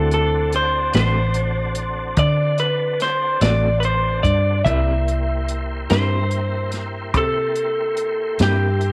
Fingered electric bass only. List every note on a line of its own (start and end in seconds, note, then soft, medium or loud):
0.00 0.90 D2 medium
0.95 2.17 A1 medium
2.17 3.38 D3 medium
3.41 4.21 A1 medium
4.24 4.63 G2 medium
4.65 5.86 C2 medium
5.91 7.14 G2 medium
7.14 8.35 C3 medium
8.40 8.92 G2 medium